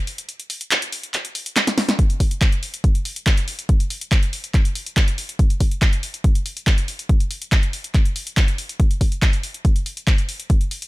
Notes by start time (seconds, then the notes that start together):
0.07 open hi-hat
0.18 closed hi-hat
0.29 closed hi-hat
0.40 closed hi-hat
0.50 open hi-hat
0.61 closed hi-hat
0.71 clap, closed hi-hat
0.82 closed hi-hat
0.92 open hi-hat
1.03 closed hi-hat
1.14 clap, closed hi-hat
1.25 closed hi-hat
1.35 open hi-hat
1.46 closed hi-hat
1.56 snare, clap, closed hi-hat
1.67 snare, closed hi-hat
1.78 snare, open hi-hat
1.89 snare, closed hi-hat
1.99 kick, closed hi-hat
2.10 closed hi-hat
2.20 kick, open hi-hat
2.31 closed hi-hat
2.41 kick, clap, closed hi-hat
2.52 closed hi-hat
2.63 open hi-hat
2.74 closed hi-hat
2.84 kick, closed hi-hat
2.95 closed hi-hat
3.05 open hi-hat
3.16 closed hi-hat
3.27 kick, clap, closed hi-hat
3.37 closed hi-hat
3.48 open hi-hat
3.59 closed hi-hat
3.69 kick, closed hi-hat
3.80 closed hi-hat
3.90 open hi-hat
4.01 closed hi-hat
4.12 kick, clap, closed hi-hat
4.23 closed hi-hat
4.33 open hi-hat
4.44 closed hi-hat
4.54 kick, clap, closed hi-hat
4.65 closed hi-hat
4.75 open hi-hat
4.86 closed hi-hat
4.97 kick, clap, closed hi-hat
5.08 closed hi-hat
5.18 open hi-hat
5.29 closed hi-hat
5.39 kick, closed hi-hat
5.50 closed hi-hat
5.60 kick, open hi-hat
5.71 closed hi-hat
5.82 kick, clap, closed hi-hat
5.93 closed hi-hat
6.03 open hi-hat
6.14 closed hi-hat
6.24 kick, closed hi-hat
6.35 closed hi-hat
6.46 open hi-hat
6.57 closed hi-hat
6.67 kick, clap, closed hi-hat
6.78 closed hi-hat
6.88 open hi-hat
6.99 closed hi-hat
7.09 kick, closed hi-hat
7.20 closed hi-hat
7.31 open hi-hat
7.42 closed hi-hat
7.52 kick, clap, closed hi-hat
7.63 closed hi-hat
7.73 open hi-hat
7.84 closed hi-hat
7.95 kick, clap, closed hi-hat
8.05 closed hi-hat
8.16 open hi-hat
8.27 closed hi-hat
8.37 kick, clap, closed hi-hat
8.48 closed hi-hat
8.58 open hi-hat
8.69 closed hi-hat
8.80 kick, closed hi-hat
8.91 closed hi-hat
9.01 kick, open hi-hat
9.12 closed hi-hat
9.22 kick, clap, closed hi-hat
9.33 closed hi-hat
9.43 open hi-hat
9.54 closed hi-hat
9.65 kick, closed hi-hat
9.76 closed hi-hat
9.86 open hi-hat
9.97 closed hi-hat
10.07 kick, clap, closed hi-hat
10.18 closed hi-hat
10.29 open hi-hat
10.40 closed hi-hat
10.50 kick, closed hi-hat
10.61 closed hi-hat
10.71 open hi-hat
10.82 closed hi-hat